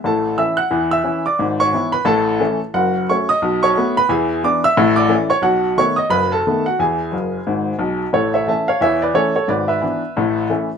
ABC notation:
X:1
M:4/4
L:1/8
Q:"Swing" 1/4=178
K:Alyd
V:1 name="Upright piano"
[Aa]2 [ee'] [ff']2 [ee']2 [=d=d']- | [=d=d'] [cc']2 [Bb] [Aa]3 z | [K:A] [Ff]2 [cc'] [^d^d']2 [cc']2 [Bb] | [Gg]2 [dd'] [ee']2 [dd']2 [cc'] |
[Ff]2 [cc'] [^d^d'] [Bb] [Aa]2 [Ff] | [Gg]6- [Gg] z | [Ac] [ce] [ea] [c=f] [ce] [Bd] [Ac] [Ac] | [Bd] [Be]6 z |]
V:2 name="Upright piano" clef=bass
[A,,,A,,]2 [E,CE]2 [E,,E,]2 [E,CE]2 | [G,,,G,,]2 [E,B,E]2 [A,,,A,,]2 [E,A,C]2 | [K:A] [F,,,F,,]2 [F,A,C]2 [B,,,B,,]2 [F,A,B,]2 | [E,,E,]2 [E,B,D]2 [A,,,A,,]2 [E,A,C]2 |
[B,,,B,,]2 [^D,A,B,]2 [F,,,F,,]2 [D,A,B,]2 | [E,,E,]2 [F,,,F,,]2 [G,,,G,,]2 [B,,,B,,]2 | [A,,,A,,]2 [E,A,C]2 [E,,E,]2 [E,A,C]2 | [G,,,G,,]2 [E,B,D]2 [A,,,A,,]2 [E,A,C]2 |]